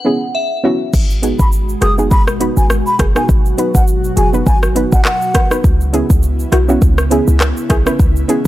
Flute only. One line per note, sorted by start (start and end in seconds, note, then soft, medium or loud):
1.39 1.48 B5 medium
1.82 1.93 D#6 medium
2.11 2.23 B5 medium
2.57 2.66 G#5 medium
2.87 2.96 B5 medium
3.16 3.25 G#5 medium
3.75 3.84 F#5 medium
4.17 4.29 G#5 medium
4.47 4.58 G#5 medium
4.92 5.01 F#5 medium
5.05 5.48 F#5 medium